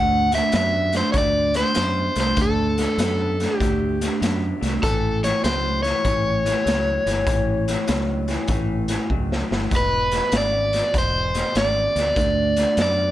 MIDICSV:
0, 0, Header, 1, 5, 480
1, 0, Start_track
1, 0, Key_signature, 3, "major"
1, 0, Tempo, 612245
1, 1860, Time_signature, 4, 2, 24, 8
1, 10281, End_track
2, 0, Start_track
2, 0, Title_t, "Overdriven electric guitar"
2, 0, Program_c, 0, 29
2, 0, Note_on_c, 0, 78, 96
2, 243, Note_off_c, 0, 78, 0
2, 273, Note_on_c, 0, 76, 92
2, 417, Note_off_c, 0, 76, 0
2, 438, Note_on_c, 0, 76, 90
2, 755, Note_off_c, 0, 76, 0
2, 759, Note_on_c, 0, 72, 88
2, 877, Note_off_c, 0, 72, 0
2, 881, Note_on_c, 0, 73, 71
2, 909, Note_off_c, 0, 73, 0
2, 923, Note_on_c, 0, 74, 88
2, 1227, Note_off_c, 0, 74, 0
2, 1230, Note_on_c, 0, 72, 95
2, 1718, Note_off_c, 0, 72, 0
2, 1728, Note_on_c, 0, 72, 88
2, 1880, Note_off_c, 0, 72, 0
2, 1892, Note_on_c, 0, 69, 74
2, 2809, Note_off_c, 0, 69, 0
2, 2809, Note_on_c, 0, 67, 74
2, 3285, Note_off_c, 0, 67, 0
2, 3790, Note_on_c, 0, 69, 79
2, 4080, Note_off_c, 0, 69, 0
2, 4110, Note_on_c, 0, 73, 96
2, 4256, Note_off_c, 0, 73, 0
2, 4266, Note_on_c, 0, 72, 92
2, 4566, Note_off_c, 0, 72, 0
2, 4570, Note_on_c, 0, 73, 93
2, 7105, Note_off_c, 0, 73, 0
2, 7656, Note_on_c, 0, 71, 83
2, 8130, Note_off_c, 0, 71, 0
2, 8134, Note_on_c, 0, 74, 91
2, 8608, Note_off_c, 0, 74, 0
2, 8611, Note_on_c, 0, 72, 96
2, 9074, Note_off_c, 0, 72, 0
2, 9078, Note_on_c, 0, 74, 93
2, 10041, Note_off_c, 0, 74, 0
2, 10050, Note_on_c, 0, 74, 90
2, 10281, Note_off_c, 0, 74, 0
2, 10281, End_track
3, 0, Start_track
3, 0, Title_t, "Clean electric guitar"
3, 0, Program_c, 1, 27
3, 0, Note_on_c, 1, 50, 69
3, 0, Note_on_c, 1, 57, 84
3, 221, Note_off_c, 1, 50, 0
3, 223, Note_off_c, 1, 57, 0
3, 243, Note_on_c, 1, 50, 72
3, 249, Note_on_c, 1, 57, 78
3, 396, Note_off_c, 1, 50, 0
3, 399, Note_off_c, 1, 57, 0
3, 419, Note_on_c, 1, 50, 70
3, 421, Note_on_c, 1, 59, 79
3, 704, Note_off_c, 1, 50, 0
3, 705, Note_off_c, 1, 59, 0
3, 729, Note_on_c, 1, 50, 72
3, 735, Note_on_c, 1, 57, 75
3, 879, Note_off_c, 1, 50, 0
3, 882, Note_off_c, 1, 57, 0
3, 892, Note_on_c, 1, 50, 81
3, 894, Note_on_c, 1, 57, 82
3, 1181, Note_off_c, 1, 50, 0
3, 1182, Note_off_c, 1, 57, 0
3, 1217, Note_on_c, 1, 50, 75
3, 1222, Note_on_c, 1, 57, 77
3, 1361, Note_off_c, 1, 50, 0
3, 1366, Note_off_c, 1, 57, 0
3, 1370, Note_on_c, 1, 50, 68
3, 1374, Note_on_c, 1, 59, 89
3, 1660, Note_off_c, 1, 50, 0
3, 1662, Note_off_c, 1, 59, 0
3, 1691, Note_on_c, 1, 50, 70
3, 1697, Note_on_c, 1, 57, 82
3, 1841, Note_off_c, 1, 50, 0
3, 1843, Note_off_c, 1, 57, 0
3, 1854, Note_on_c, 1, 50, 67
3, 1861, Note_on_c, 1, 57, 82
3, 2143, Note_off_c, 1, 50, 0
3, 2146, Note_off_c, 1, 57, 0
3, 2182, Note_on_c, 1, 50, 78
3, 2183, Note_on_c, 1, 57, 71
3, 2326, Note_off_c, 1, 50, 0
3, 2327, Note_off_c, 1, 57, 0
3, 2349, Note_on_c, 1, 50, 78
3, 2351, Note_on_c, 1, 59, 95
3, 2630, Note_off_c, 1, 50, 0
3, 2631, Note_off_c, 1, 59, 0
3, 2669, Note_on_c, 1, 50, 68
3, 2671, Note_on_c, 1, 57, 72
3, 2810, Note_off_c, 1, 50, 0
3, 2811, Note_off_c, 1, 57, 0
3, 2828, Note_on_c, 1, 50, 68
3, 2835, Note_on_c, 1, 57, 83
3, 3110, Note_off_c, 1, 50, 0
3, 3113, Note_off_c, 1, 57, 0
3, 3148, Note_on_c, 1, 50, 82
3, 3149, Note_on_c, 1, 57, 79
3, 3290, Note_off_c, 1, 50, 0
3, 3290, Note_off_c, 1, 57, 0
3, 3299, Note_on_c, 1, 50, 73
3, 3304, Note_on_c, 1, 59, 83
3, 3585, Note_off_c, 1, 50, 0
3, 3588, Note_off_c, 1, 59, 0
3, 3614, Note_on_c, 1, 50, 67
3, 3617, Note_on_c, 1, 57, 85
3, 3762, Note_off_c, 1, 50, 0
3, 3764, Note_off_c, 1, 57, 0
3, 3780, Note_on_c, 1, 45, 73
3, 3789, Note_on_c, 1, 52, 84
3, 4066, Note_off_c, 1, 45, 0
3, 4070, Note_off_c, 1, 52, 0
3, 4103, Note_on_c, 1, 45, 76
3, 4106, Note_on_c, 1, 52, 74
3, 4247, Note_off_c, 1, 45, 0
3, 4249, Note_off_c, 1, 52, 0
3, 4263, Note_on_c, 1, 45, 86
3, 4265, Note_on_c, 1, 54, 83
3, 4547, Note_off_c, 1, 45, 0
3, 4548, Note_off_c, 1, 54, 0
3, 4576, Note_on_c, 1, 45, 74
3, 4577, Note_on_c, 1, 52, 78
3, 4724, Note_off_c, 1, 45, 0
3, 4724, Note_off_c, 1, 52, 0
3, 4739, Note_on_c, 1, 45, 74
3, 4745, Note_on_c, 1, 52, 94
3, 5026, Note_off_c, 1, 45, 0
3, 5028, Note_off_c, 1, 52, 0
3, 5056, Note_on_c, 1, 45, 66
3, 5062, Note_on_c, 1, 52, 85
3, 5204, Note_off_c, 1, 45, 0
3, 5207, Note_off_c, 1, 52, 0
3, 5215, Note_on_c, 1, 45, 72
3, 5219, Note_on_c, 1, 54, 82
3, 5503, Note_off_c, 1, 45, 0
3, 5505, Note_off_c, 1, 54, 0
3, 5538, Note_on_c, 1, 45, 67
3, 5542, Note_on_c, 1, 52, 81
3, 5685, Note_off_c, 1, 45, 0
3, 5687, Note_off_c, 1, 52, 0
3, 5700, Note_on_c, 1, 45, 71
3, 5702, Note_on_c, 1, 52, 79
3, 5986, Note_off_c, 1, 45, 0
3, 5987, Note_off_c, 1, 52, 0
3, 6021, Note_on_c, 1, 45, 80
3, 6022, Note_on_c, 1, 52, 75
3, 6166, Note_off_c, 1, 45, 0
3, 6167, Note_off_c, 1, 52, 0
3, 6177, Note_on_c, 1, 45, 80
3, 6180, Note_on_c, 1, 54, 95
3, 6464, Note_off_c, 1, 45, 0
3, 6466, Note_off_c, 1, 54, 0
3, 6491, Note_on_c, 1, 45, 72
3, 6495, Note_on_c, 1, 52, 81
3, 6641, Note_off_c, 1, 45, 0
3, 6643, Note_off_c, 1, 52, 0
3, 6657, Note_on_c, 1, 45, 74
3, 6665, Note_on_c, 1, 52, 91
3, 6944, Note_off_c, 1, 45, 0
3, 6948, Note_off_c, 1, 52, 0
3, 6976, Note_on_c, 1, 45, 69
3, 6977, Note_on_c, 1, 52, 82
3, 7124, Note_off_c, 1, 45, 0
3, 7124, Note_off_c, 1, 52, 0
3, 7143, Note_on_c, 1, 45, 62
3, 7143, Note_on_c, 1, 54, 75
3, 7427, Note_off_c, 1, 45, 0
3, 7427, Note_off_c, 1, 54, 0
3, 7453, Note_on_c, 1, 45, 71
3, 7458, Note_on_c, 1, 52, 83
3, 7602, Note_off_c, 1, 45, 0
3, 7604, Note_off_c, 1, 52, 0
3, 7615, Note_on_c, 1, 40, 70
3, 7618, Note_on_c, 1, 47, 74
3, 7903, Note_off_c, 1, 40, 0
3, 7904, Note_off_c, 1, 47, 0
3, 7932, Note_on_c, 1, 40, 69
3, 7938, Note_on_c, 1, 47, 85
3, 8081, Note_off_c, 1, 40, 0
3, 8084, Note_off_c, 1, 47, 0
3, 8093, Note_on_c, 1, 40, 71
3, 8099, Note_on_c, 1, 49, 86
3, 8381, Note_off_c, 1, 40, 0
3, 8385, Note_off_c, 1, 49, 0
3, 8413, Note_on_c, 1, 40, 67
3, 8422, Note_on_c, 1, 47, 68
3, 8562, Note_off_c, 1, 40, 0
3, 8566, Note_off_c, 1, 47, 0
3, 8579, Note_on_c, 1, 40, 83
3, 8582, Note_on_c, 1, 47, 84
3, 8864, Note_off_c, 1, 40, 0
3, 8866, Note_off_c, 1, 47, 0
3, 8895, Note_on_c, 1, 40, 78
3, 8899, Note_on_c, 1, 47, 88
3, 9042, Note_off_c, 1, 40, 0
3, 9044, Note_off_c, 1, 47, 0
3, 9062, Note_on_c, 1, 40, 69
3, 9067, Note_on_c, 1, 49, 73
3, 9346, Note_off_c, 1, 40, 0
3, 9348, Note_off_c, 1, 49, 0
3, 9374, Note_on_c, 1, 47, 79
3, 9375, Note_on_c, 1, 40, 68
3, 9522, Note_off_c, 1, 40, 0
3, 9522, Note_off_c, 1, 47, 0
3, 9536, Note_on_c, 1, 50, 82
3, 9542, Note_on_c, 1, 57, 92
3, 9822, Note_off_c, 1, 50, 0
3, 9825, Note_off_c, 1, 57, 0
3, 9858, Note_on_c, 1, 50, 67
3, 9863, Note_on_c, 1, 57, 77
3, 10003, Note_off_c, 1, 50, 0
3, 10006, Note_off_c, 1, 57, 0
3, 10024, Note_on_c, 1, 50, 82
3, 10030, Note_on_c, 1, 59, 81
3, 10281, Note_off_c, 1, 50, 0
3, 10281, Note_off_c, 1, 59, 0
3, 10281, End_track
4, 0, Start_track
4, 0, Title_t, "Fingered electric bass"
4, 0, Program_c, 2, 33
4, 0, Note_on_c, 2, 38, 89
4, 316, Note_off_c, 2, 38, 0
4, 418, Note_on_c, 2, 42, 89
4, 795, Note_off_c, 2, 42, 0
4, 893, Note_on_c, 2, 38, 84
4, 1273, Note_off_c, 2, 38, 0
4, 1385, Note_on_c, 2, 42, 85
4, 1632, Note_off_c, 2, 42, 0
4, 1695, Note_on_c, 2, 36, 89
4, 1824, Note_off_c, 2, 36, 0
4, 1857, Note_on_c, 2, 38, 90
4, 2235, Note_off_c, 2, 38, 0
4, 2333, Note_on_c, 2, 42, 89
4, 2713, Note_off_c, 2, 42, 0
4, 2823, Note_on_c, 2, 38, 81
4, 3199, Note_off_c, 2, 38, 0
4, 3303, Note_on_c, 2, 42, 83
4, 3551, Note_off_c, 2, 42, 0
4, 3624, Note_on_c, 2, 36, 89
4, 3749, Note_off_c, 2, 36, 0
4, 3788, Note_on_c, 2, 33, 87
4, 4162, Note_off_c, 2, 33, 0
4, 4266, Note_on_c, 2, 37, 92
4, 4641, Note_off_c, 2, 37, 0
4, 4741, Note_on_c, 2, 33, 99
4, 5118, Note_off_c, 2, 33, 0
4, 5219, Note_on_c, 2, 37, 79
4, 5469, Note_off_c, 2, 37, 0
4, 5535, Note_on_c, 2, 31, 88
4, 5664, Note_off_c, 2, 31, 0
4, 5699, Note_on_c, 2, 33, 91
4, 6076, Note_off_c, 2, 33, 0
4, 6183, Note_on_c, 2, 37, 93
4, 6559, Note_off_c, 2, 37, 0
4, 6651, Note_on_c, 2, 33, 85
4, 7032, Note_off_c, 2, 33, 0
4, 7137, Note_on_c, 2, 37, 92
4, 7387, Note_off_c, 2, 37, 0
4, 7456, Note_on_c, 2, 31, 84
4, 7584, Note_off_c, 2, 31, 0
4, 7618, Note_on_c, 2, 28, 83
4, 7995, Note_off_c, 2, 28, 0
4, 8092, Note_on_c, 2, 32, 92
4, 8471, Note_off_c, 2, 32, 0
4, 8580, Note_on_c, 2, 28, 88
4, 8956, Note_off_c, 2, 28, 0
4, 9058, Note_on_c, 2, 32, 92
4, 9307, Note_off_c, 2, 32, 0
4, 9374, Note_on_c, 2, 38, 89
4, 9502, Note_off_c, 2, 38, 0
4, 9542, Note_on_c, 2, 38, 88
4, 9917, Note_off_c, 2, 38, 0
4, 10013, Note_on_c, 2, 42, 91
4, 10281, Note_off_c, 2, 42, 0
4, 10281, End_track
5, 0, Start_track
5, 0, Title_t, "Drums"
5, 250, Note_on_c, 9, 42, 58
5, 262, Note_on_c, 9, 38, 35
5, 328, Note_off_c, 9, 42, 0
5, 341, Note_off_c, 9, 38, 0
5, 408, Note_on_c, 9, 42, 77
5, 420, Note_on_c, 9, 38, 112
5, 486, Note_off_c, 9, 42, 0
5, 499, Note_off_c, 9, 38, 0
5, 725, Note_on_c, 9, 42, 52
5, 738, Note_on_c, 9, 38, 28
5, 804, Note_off_c, 9, 42, 0
5, 816, Note_off_c, 9, 38, 0
5, 889, Note_on_c, 9, 42, 70
5, 893, Note_on_c, 9, 36, 92
5, 901, Note_on_c, 9, 38, 33
5, 967, Note_off_c, 9, 42, 0
5, 972, Note_off_c, 9, 36, 0
5, 979, Note_off_c, 9, 38, 0
5, 1208, Note_on_c, 9, 42, 58
5, 1221, Note_on_c, 9, 38, 32
5, 1287, Note_off_c, 9, 42, 0
5, 1299, Note_off_c, 9, 38, 0
5, 1368, Note_on_c, 9, 42, 81
5, 1381, Note_on_c, 9, 38, 98
5, 1446, Note_off_c, 9, 42, 0
5, 1459, Note_off_c, 9, 38, 0
5, 1690, Note_on_c, 9, 42, 58
5, 1703, Note_on_c, 9, 38, 32
5, 1768, Note_off_c, 9, 42, 0
5, 1781, Note_off_c, 9, 38, 0
5, 1855, Note_on_c, 9, 42, 81
5, 1859, Note_on_c, 9, 36, 103
5, 1868, Note_on_c, 9, 38, 37
5, 1934, Note_off_c, 9, 42, 0
5, 1937, Note_off_c, 9, 36, 0
5, 1946, Note_off_c, 9, 38, 0
5, 2177, Note_on_c, 9, 42, 55
5, 2189, Note_on_c, 9, 38, 32
5, 2255, Note_off_c, 9, 42, 0
5, 2268, Note_off_c, 9, 38, 0
5, 2340, Note_on_c, 9, 42, 98
5, 2353, Note_on_c, 9, 38, 112
5, 2419, Note_off_c, 9, 42, 0
5, 2431, Note_off_c, 9, 38, 0
5, 2666, Note_on_c, 9, 42, 55
5, 2679, Note_on_c, 9, 38, 28
5, 2744, Note_off_c, 9, 42, 0
5, 2757, Note_off_c, 9, 38, 0
5, 2826, Note_on_c, 9, 36, 92
5, 2829, Note_on_c, 9, 42, 76
5, 2841, Note_on_c, 9, 38, 35
5, 2905, Note_off_c, 9, 36, 0
5, 2907, Note_off_c, 9, 42, 0
5, 2920, Note_off_c, 9, 38, 0
5, 3147, Note_on_c, 9, 42, 57
5, 3159, Note_on_c, 9, 38, 34
5, 3225, Note_off_c, 9, 42, 0
5, 3238, Note_off_c, 9, 38, 0
5, 3311, Note_on_c, 9, 42, 78
5, 3323, Note_on_c, 9, 38, 98
5, 3389, Note_off_c, 9, 42, 0
5, 3402, Note_off_c, 9, 38, 0
5, 3626, Note_on_c, 9, 42, 49
5, 3639, Note_on_c, 9, 38, 28
5, 3705, Note_off_c, 9, 42, 0
5, 3717, Note_off_c, 9, 38, 0
5, 3786, Note_on_c, 9, 36, 112
5, 3786, Note_on_c, 9, 42, 78
5, 3798, Note_on_c, 9, 38, 34
5, 3864, Note_off_c, 9, 42, 0
5, 3865, Note_off_c, 9, 36, 0
5, 3877, Note_off_c, 9, 38, 0
5, 4105, Note_on_c, 9, 42, 60
5, 4117, Note_on_c, 9, 38, 33
5, 4183, Note_off_c, 9, 42, 0
5, 4196, Note_off_c, 9, 38, 0
5, 4266, Note_on_c, 9, 42, 81
5, 4279, Note_on_c, 9, 38, 119
5, 4344, Note_off_c, 9, 42, 0
5, 4357, Note_off_c, 9, 38, 0
5, 4580, Note_on_c, 9, 42, 50
5, 4592, Note_on_c, 9, 38, 29
5, 4658, Note_off_c, 9, 42, 0
5, 4671, Note_off_c, 9, 38, 0
5, 4740, Note_on_c, 9, 42, 73
5, 4742, Note_on_c, 9, 36, 97
5, 4753, Note_on_c, 9, 38, 32
5, 4819, Note_off_c, 9, 42, 0
5, 4821, Note_off_c, 9, 36, 0
5, 4831, Note_off_c, 9, 38, 0
5, 5064, Note_on_c, 9, 42, 60
5, 5077, Note_on_c, 9, 38, 33
5, 5143, Note_off_c, 9, 42, 0
5, 5155, Note_off_c, 9, 38, 0
5, 5227, Note_on_c, 9, 42, 78
5, 5239, Note_on_c, 9, 38, 96
5, 5305, Note_off_c, 9, 42, 0
5, 5318, Note_off_c, 9, 38, 0
5, 5541, Note_on_c, 9, 42, 60
5, 5553, Note_on_c, 9, 38, 34
5, 5619, Note_off_c, 9, 42, 0
5, 5632, Note_off_c, 9, 38, 0
5, 5697, Note_on_c, 9, 36, 114
5, 5697, Note_on_c, 9, 42, 81
5, 5709, Note_on_c, 9, 38, 34
5, 5775, Note_off_c, 9, 36, 0
5, 5775, Note_off_c, 9, 42, 0
5, 5788, Note_off_c, 9, 38, 0
5, 6020, Note_on_c, 9, 42, 64
5, 6033, Note_on_c, 9, 38, 35
5, 6098, Note_off_c, 9, 42, 0
5, 6111, Note_off_c, 9, 38, 0
5, 6174, Note_on_c, 9, 42, 92
5, 6187, Note_on_c, 9, 38, 121
5, 6253, Note_off_c, 9, 42, 0
5, 6265, Note_off_c, 9, 38, 0
5, 6490, Note_on_c, 9, 42, 49
5, 6502, Note_on_c, 9, 38, 29
5, 6568, Note_off_c, 9, 42, 0
5, 6581, Note_off_c, 9, 38, 0
5, 6645, Note_on_c, 9, 42, 77
5, 6652, Note_on_c, 9, 36, 100
5, 6657, Note_on_c, 9, 38, 35
5, 6723, Note_off_c, 9, 42, 0
5, 6731, Note_off_c, 9, 36, 0
5, 6736, Note_off_c, 9, 38, 0
5, 6963, Note_on_c, 9, 42, 61
5, 6976, Note_on_c, 9, 38, 35
5, 7041, Note_off_c, 9, 42, 0
5, 7054, Note_off_c, 9, 38, 0
5, 7134, Note_on_c, 9, 36, 58
5, 7213, Note_off_c, 9, 36, 0
5, 7309, Note_on_c, 9, 38, 61
5, 7387, Note_off_c, 9, 38, 0
5, 7465, Note_on_c, 9, 38, 92
5, 7544, Note_off_c, 9, 38, 0
5, 7615, Note_on_c, 9, 42, 80
5, 7616, Note_on_c, 9, 36, 106
5, 7627, Note_on_c, 9, 38, 30
5, 7693, Note_off_c, 9, 42, 0
5, 7694, Note_off_c, 9, 36, 0
5, 7706, Note_off_c, 9, 38, 0
5, 7929, Note_on_c, 9, 42, 56
5, 7942, Note_on_c, 9, 38, 32
5, 8007, Note_off_c, 9, 42, 0
5, 8020, Note_off_c, 9, 38, 0
5, 8089, Note_on_c, 9, 42, 85
5, 8101, Note_on_c, 9, 38, 119
5, 8167, Note_off_c, 9, 42, 0
5, 8180, Note_off_c, 9, 38, 0
5, 8411, Note_on_c, 9, 42, 53
5, 8424, Note_on_c, 9, 38, 29
5, 8489, Note_off_c, 9, 42, 0
5, 8502, Note_off_c, 9, 38, 0
5, 8576, Note_on_c, 9, 42, 74
5, 8577, Note_on_c, 9, 36, 94
5, 8588, Note_on_c, 9, 38, 28
5, 8654, Note_off_c, 9, 42, 0
5, 8656, Note_off_c, 9, 36, 0
5, 8667, Note_off_c, 9, 38, 0
5, 8894, Note_on_c, 9, 42, 57
5, 8907, Note_on_c, 9, 38, 36
5, 8973, Note_off_c, 9, 42, 0
5, 8985, Note_off_c, 9, 38, 0
5, 9056, Note_on_c, 9, 42, 76
5, 9069, Note_on_c, 9, 38, 107
5, 9135, Note_off_c, 9, 42, 0
5, 9147, Note_off_c, 9, 38, 0
5, 9377, Note_on_c, 9, 42, 55
5, 9389, Note_on_c, 9, 38, 30
5, 9455, Note_off_c, 9, 42, 0
5, 9468, Note_off_c, 9, 38, 0
5, 9536, Note_on_c, 9, 36, 105
5, 9537, Note_on_c, 9, 42, 75
5, 9549, Note_on_c, 9, 38, 35
5, 9614, Note_off_c, 9, 36, 0
5, 9615, Note_off_c, 9, 42, 0
5, 9628, Note_off_c, 9, 38, 0
5, 9851, Note_on_c, 9, 42, 67
5, 9863, Note_on_c, 9, 38, 33
5, 9929, Note_off_c, 9, 42, 0
5, 9942, Note_off_c, 9, 38, 0
5, 10012, Note_on_c, 9, 42, 84
5, 10025, Note_on_c, 9, 38, 112
5, 10091, Note_off_c, 9, 42, 0
5, 10103, Note_off_c, 9, 38, 0
5, 10281, End_track
0, 0, End_of_file